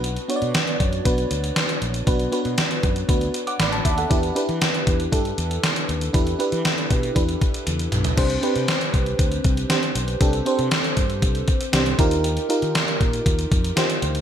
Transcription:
<<
  \new Staff \with { instrumentName = "FM electric piano" } { \time 4/4 \key c \lydian \tempo 4 = 118 << { r1 | r2 r8. <fis'' d'''>16 <d'' b''>16 a''16 e''16 <a' fis''>16~ | <a' fis''>16 r2. r8. | r1 |
r1 | r1 | r1 | } \\ { <b d' fis' b'>8 <b d' fis' cis'' d''>4. <b d' fis' b'>4.~ <b d' fis' b'>16 r16 | <b d' fis' b'>8 <b d' fis' b'>4. <b d' fis' b'>4.~ <b d' fis' b'>16 r16 | <d' e' g' b'>8 <d' e' g' b'>4. <d' e' g' a'>4.~ <d' e' g' a'>16 r16 | <d' e' g' b'>8 <d' e' g' b'>4. <d' e' g' b'>4.~ <d' e' g' b'>16 r16 |
<c' d' g' c''>8 <c' d' g' b'>4.~ <c' d' g' b'>16 r8. <c' d' g' c''>4 | <c' d' g' a'>8 <c' d' g' c''>4.~ <c' d' g' c''>16 r8. <c' d' g' c''>8 <ees' f' g' bes'>8~ | <ees' f' g' bes'>8 <ees' f' g' bes'>4.~ <ees' f' g' bes'>16 r8. <ees' f' g' c''>4 | } >> }
  \new Staff \with { instrumentName = "Fretless electric bass" } { \clef bass \time 4/4 \key c \lydian b,,8 r16 b,16 r8 fis,8 b,,8 d,8 r8 bes,,8 | b,,8 r16 b,16 r8 fis,8 d,8 r8 a,,8 ees,8 | e,8 r16 e16 r8 e,8 g,8 e,8 r8 ees,8 | e,8 r16 e16 r8 b,8 e,8 r8 e,8 b,,8 |
c,8 r16 c16 r8 c,8 d,8 c,8 r8 b,,8 | c,8 r16 c16 r8 g,8 c,8 r8 c,8 ees,8~ | ees,8 r16 ees16 r8 bes,8 ees,8 f,8 r8 d,8 | }
  \new DrumStaff \with { instrumentName = "Drums" } \drummode { \time 4/4 hh16 hh16 hh16 hh16 <hh sn>16 hh16 <hh bd>16 hh16 <hh bd>16 hh16 hh16 hh16 <hh sn>16 hh16 hh16 hh16 | <hh bd>16 hh16 hh16 hh16 <hh sn>16 hh16 <hh bd>16 hh16 <hh bd>16 hh16 hh16 hh16 <hh sn>16 hh16 <hh bd>16 hh16 | <hh bd>16 hh16 hh16 hh16 <hh sn>16 hh16 <hh bd>16 hh16 <hh bd>16 hh16 hh16 hh16 <hh sn>16 hh16 hh16 hh16 | <hh bd>16 hh16 hh16 hh16 <hh sn>16 hh16 <hh bd>16 hh16 <hh bd>16 hh16 <hh bd>16 hh16 <hh tommh>16 hh16 <hh toml>16 <hh tomfh>16 |
<cymc hh bd>16 hh16 hh16 hh16 <hh sn>16 hh16 <hh bd>16 hh16 <hh bd>16 hh16 <hh bd>16 hh16 <hh sn>16 hh16 hh16 hh16 | <hh bd>16 hh16 hh16 hh16 <hh sn>16 hh16 <hh bd>16 hh16 <hh bd>16 hh16 <hh bd>16 hh16 <hh sn>16 hh16 <hh bd>16 hh16 | hh16 hh16 hh16 hh16 <hh sn>16 hh16 <hh bd>16 hh16 <hh bd>16 hh16 <hh bd>16 hh16 <hh sn>16 hh16 hh16 hh16 | }
>>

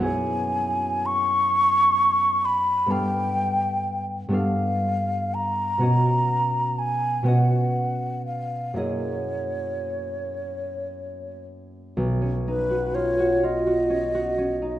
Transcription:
<<
  \new Staff \with { instrumentName = "Flute" } { \time 6/8 \key fis \major \tempo 4. = 41 gis''4 cis'''4. b''8 | g''4 r8 f''4 ais''8~ | ais''4 gis''8 fis''4 eis''8 | cis''2~ cis''8 r8 |
r8 b'8 cis''8 dis''4. | }
  \new Staff \with { instrumentName = "Harp" } { \time 6/8 \key fis \major << { r2. | r2. | r2. | r2. |
b,,16 cis'16 dis'16 fis'16 eis'16 fis'16 eis'16 fis'16 cis'16 fis'16 cis'16 dis'16 | } \\ { <fis, b cis' e' fis' gis' cis''>2. | <g, b d' a' f''>4. <g, b d' a' f''>4. | <b, b cis' fis' dis''>4. <b, b cis' fis' dis''>4. | <fis, ais e' gis' dis''>2.~ |
<fis, ais e' gis' dis''>2. | } >> }
>>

